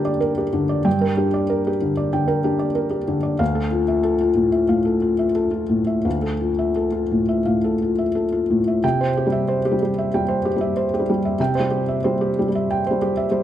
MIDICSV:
0, 0, Header, 1, 2, 480
1, 0, Start_track
1, 0, Tempo, 630915
1, 654, Time_signature, 4, 2, 24, 8
1, 2101, Tempo, 646552
1, 3541, Tempo, 688073
1, 6421, Tempo, 641711
1, 9863, End_track
2, 0, Start_track
2, 0, Title_t, "Felt piano"
2, 0, Program_c, 0, 0
2, 0, Control_c, 0, 64, 127
2, 0, Note_on_c, 0, 43, 54
2, 0, Note_on_c, 0, 50, 45
2, 0, Note_on_c, 0, 62, 44
2, 0, Note_on_c, 0, 67, 47
2, 0, Note_on_c, 0, 70, 46
2, 0, Note_on_c, 0, 74, 48
2, 0, Note_on_c, 0, 79, 49
2, 38, Note_off_c, 0, 74, 0
2, 38, Note_on_c, 0, 74, 49
2, 80, Note_off_c, 0, 50, 0
2, 126, Note_off_c, 0, 67, 0
2, 156, Note_off_c, 0, 70, 0
2, 156, Note_on_c, 0, 70, 53
2, 237, Note_off_c, 0, 74, 0
2, 287, Note_on_c, 0, 67, 43
2, 312, Note_off_c, 0, 62, 0
2, 356, Note_off_c, 0, 70, 0
2, 405, Note_on_c, 0, 50, 50
2, 482, Note_off_c, 0, 67, 0
2, 527, Note_on_c, 0, 74, 49
2, 601, Note_off_c, 0, 50, 0
2, 645, Note_off_c, 0, 79, 0
2, 645, Note_on_c, 0, 79, 53
2, 647, Note_off_c, 0, 43, 0
2, 647, Note_on_c, 0, 43, 54
2, 666, Control_c, 0, 64, 0
2, 722, Note_off_c, 0, 74, 0
2, 771, Note_on_c, 0, 70, 51
2, 787, Control_c, 0, 64, 127
2, 841, Note_off_c, 0, 79, 0
2, 890, Note_on_c, 0, 62, 43
2, 893, Note_on_c, 0, 67, 46
2, 964, Note_off_c, 0, 70, 0
2, 1018, Note_on_c, 0, 74, 48
2, 1085, Note_off_c, 0, 67, 0
2, 1138, Note_on_c, 0, 70, 52
2, 1207, Note_off_c, 0, 74, 0
2, 1270, Note_on_c, 0, 67, 47
2, 1276, Note_off_c, 0, 62, 0
2, 1328, Note_off_c, 0, 70, 0
2, 1379, Note_on_c, 0, 50, 42
2, 1455, Note_off_c, 0, 67, 0
2, 1501, Note_on_c, 0, 74, 46
2, 1570, Note_off_c, 0, 50, 0
2, 1583, Note_off_c, 0, 43, 0
2, 1620, Note_on_c, 0, 79, 49
2, 1625, Note_on_c, 0, 50, 45
2, 1691, Note_off_c, 0, 74, 0
2, 1732, Note_on_c, 0, 70, 50
2, 1811, Note_off_c, 0, 79, 0
2, 1858, Note_on_c, 0, 62, 43
2, 1858, Note_on_c, 0, 67, 44
2, 1928, Note_off_c, 0, 70, 0
2, 1972, Note_on_c, 0, 74, 48
2, 2008, Note_off_c, 0, 50, 0
2, 2052, Note_off_c, 0, 67, 0
2, 2094, Note_on_c, 0, 70, 50
2, 2169, Note_off_c, 0, 74, 0
2, 2208, Note_on_c, 0, 67, 42
2, 2243, Note_off_c, 0, 62, 0
2, 2288, Note_off_c, 0, 70, 0
2, 2336, Note_on_c, 0, 50, 48
2, 2404, Note_off_c, 0, 67, 0
2, 2448, Note_on_c, 0, 74, 45
2, 2528, Note_off_c, 0, 50, 0
2, 2568, Note_on_c, 0, 77, 65
2, 2571, Note_on_c, 0, 38, 54
2, 2572, Note_off_c, 0, 74, 0
2, 2590, Control_c, 0, 64, 0
2, 2687, Note_on_c, 0, 69, 47
2, 2714, Control_c, 0, 64, 127
2, 2765, Note_off_c, 0, 77, 0
2, 2805, Note_on_c, 0, 65, 43
2, 2885, Note_off_c, 0, 69, 0
2, 2931, Note_on_c, 0, 76, 44
2, 3003, Note_off_c, 0, 65, 0
2, 3045, Note_on_c, 0, 69, 48
2, 3126, Note_off_c, 0, 76, 0
2, 3173, Note_on_c, 0, 65, 41
2, 3243, Note_off_c, 0, 69, 0
2, 3280, Note_on_c, 0, 45, 40
2, 3367, Note_off_c, 0, 65, 0
2, 3407, Note_on_c, 0, 76, 41
2, 3483, Note_off_c, 0, 45, 0
2, 3509, Note_off_c, 0, 38, 0
2, 3531, Note_on_c, 0, 77, 44
2, 3533, Note_on_c, 0, 45, 37
2, 3606, Note_off_c, 0, 76, 0
2, 3645, Note_on_c, 0, 69, 42
2, 3723, Note_off_c, 0, 77, 0
2, 3763, Note_on_c, 0, 65, 38
2, 3839, Note_off_c, 0, 69, 0
2, 3881, Note_on_c, 0, 76, 42
2, 3911, Note_off_c, 0, 45, 0
2, 3957, Note_off_c, 0, 65, 0
2, 3994, Note_on_c, 0, 69, 44
2, 4075, Note_off_c, 0, 76, 0
2, 4106, Note_on_c, 0, 65, 39
2, 4190, Note_off_c, 0, 69, 0
2, 4235, Note_on_c, 0, 45, 38
2, 4306, Note_off_c, 0, 65, 0
2, 4355, Note_on_c, 0, 76, 39
2, 4431, Note_off_c, 0, 45, 0
2, 4480, Note_on_c, 0, 38, 43
2, 4482, Note_on_c, 0, 77, 39
2, 4497, Control_c, 0, 64, 0
2, 4552, Note_off_c, 0, 76, 0
2, 4601, Note_on_c, 0, 69, 40
2, 4617, Control_c, 0, 64, 127
2, 4677, Note_off_c, 0, 77, 0
2, 4729, Note_on_c, 0, 65, 36
2, 4798, Note_off_c, 0, 69, 0
2, 4856, Note_on_c, 0, 76, 40
2, 4924, Note_off_c, 0, 65, 0
2, 4975, Note_on_c, 0, 69, 42
2, 5049, Note_off_c, 0, 76, 0
2, 5090, Note_on_c, 0, 65, 38
2, 5168, Note_off_c, 0, 69, 0
2, 5225, Note_on_c, 0, 45, 35
2, 5285, Note_off_c, 0, 65, 0
2, 5345, Note_on_c, 0, 76, 39
2, 5411, Note_off_c, 0, 45, 0
2, 5424, Note_off_c, 0, 38, 0
2, 5462, Note_on_c, 0, 77, 40
2, 5464, Note_on_c, 0, 45, 34
2, 5531, Note_off_c, 0, 76, 0
2, 5593, Note_on_c, 0, 69, 40
2, 5651, Note_off_c, 0, 77, 0
2, 5717, Note_on_c, 0, 65, 36
2, 5777, Note_off_c, 0, 69, 0
2, 5832, Note_on_c, 0, 76, 41
2, 5845, Note_off_c, 0, 45, 0
2, 5900, Note_off_c, 0, 65, 0
2, 5949, Note_on_c, 0, 69, 40
2, 6019, Note_off_c, 0, 76, 0
2, 6068, Note_on_c, 0, 65, 34
2, 6139, Note_off_c, 0, 69, 0
2, 6194, Note_on_c, 0, 45, 39
2, 6261, Note_off_c, 0, 65, 0
2, 6314, Note_on_c, 0, 76, 37
2, 6381, Note_off_c, 0, 45, 0
2, 6427, Note_off_c, 0, 76, 0
2, 6427, Note_on_c, 0, 79, 68
2, 6429, Note_on_c, 0, 48, 59
2, 6434, Control_c, 0, 64, 0
2, 6554, Note_on_c, 0, 72, 52
2, 6559, Control_c, 0, 64, 127
2, 6623, Note_off_c, 0, 79, 0
2, 6678, Note_on_c, 0, 67, 47
2, 6747, Note_off_c, 0, 72, 0
2, 6747, Note_on_c, 0, 55, 46
2, 6789, Note_on_c, 0, 76, 51
2, 6869, Note_off_c, 0, 67, 0
2, 6910, Note_on_c, 0, 72, 55
2, 6983, Note_off_c, 0, 76, 0
2, 7006, Note_off_c, 0, 55, 0
2, 7037, Note_on_c, 0, 67, 48
2, 7083, Note_on_c, 0, 55, 44
2, 7102, Note_off_c, 0, 72, 0
2, 7153, Note_off_c, 0, 55, 0
2, 7164, Note_on_c, 0, 55, 43
2, 7224, Note_off_c, 0, 67, 0
2, 7285, Note_on_c, 0, 76, 47
2, 7346, Note_off_c, 0, 55, 0
2, 7361, Note_off_c, 0, 48, 0
2, 7402, Note_on_c, 0, 55, 50
2, 7403, Note_on_c, 0, 79, 55
2, 7465, Note_off_c, 0, 76, 0
2, 7510, Note_on_c, 0, 72, 51
2, 7584, Note_off_c, 0, 79, 0
2, 7635, Note_on_c, 0, 67, 49
2, 7647, Note_off_c, 0, 55, 0
2, 7697, Note_off_c, 0, 72, 0
2, 7717, Note_on_c, 0, 55, 43
2, 7751, Note_on_c, 0, 76, 52
2, 7819, Note_off_c, 0, 67, 0
2, 7870, Note_on_c, 0, 72, 51
2, 7936, Note_off_c, 0, 76, 0
2, 7963, Note_off_c, 0, 55, 0
2, 7999, Note_on_c, 0, 67, 46
2, 8040, Note_on_c, 0, 55, 46
2, 8055, Note_off_c, 0, 72, 0
2, 8105, Note_off_c, 0, 55, 0
2, 8116, Note_on_c, 0, 55, 54
2, 8179, Note_off_c, 0, 67, 0
2, 8233, Note_on_c, 0, 76, 49
2, 8297, Note_off_c, 0, 55, 0
2, 8343, Note_on_c, 0, 48, 59
2, 8347, Control_c, 0, 64, 0
2, 8351, Note_on_c, 0, 79, 52
2, 8415, Note_off_c, 0, 76, 0
2, 8455, Control_c, 0, 64, 127
2, 8458, Note_on_c, 0, 72, 54
2, 8491, Note_on_c, 0, 55, 47
2, 8534, Note_off_c, 0, 79, 0
2, 8573, Note_on_c, 0, 67, 48
2, 8649, Note_off_c, 0, 72, 0
2, 8706, Note_on_c, 0, 76, 47
2, 8751, Note_off_c, 0, 55, 0
2, 8769, Note_off_c, 0, 67, 0
2, 8824, Note_on_c, 0, 72, 53
2, 8830, Note_on_c, 0, 55, 50
2, 8898, Note_off_c, 0, 76, 0
2, 8950, Note_on_c, 0, 67, 49
2, 9018, Note_off_c, 0, 72, 0
2, 9072, Note_off_c, 0, 55, 0
2, 9084, Note_on_c, 0, 55, 49
2, 9141, Note_off_c, 0, 55, 0
2, 9142, Note_off_c, 0, 67, 0
2, 9153, Note_on_c, 0, 55, 41
2, 9206, Note_on_c, 0, 76, 50
2, 9283, Note_off_c, 0, 48, 0
2, 9321, Note_on_c, 0, 79, 55
2, 9389, Note_off_c, 0, 76, 0
2, 9406, Note_off_c, 0, 55, 0
2, 9441, Note_on_c, 0, 72, 52
2, 9472, Note_on_c, 0, 55, 47
2, 9505, Note_off_c, 0, 79, 0
2, 9554, Note_on_c, 0, 67, 52
2, 9623, Note_off_c, 0, 72, 0
2, 9668, Note_on_c, 0, 76, 54
2, 9721, Note_off_c, 0, 55, 0
2, 9739, Note_off_c, 0, 67, 0
2, 9774, Note_on_c, 0, 55, 47
2, 9776, Note_on_c, 0, 72, 51
2, 9855, Note_off_c, 0, 76, 0
2, 9863, Note_off_c, 0, 55, 0
2, 9863, Note_off_c, 0, 72, 0
2, 9863, End_track
0, 0, End_of_file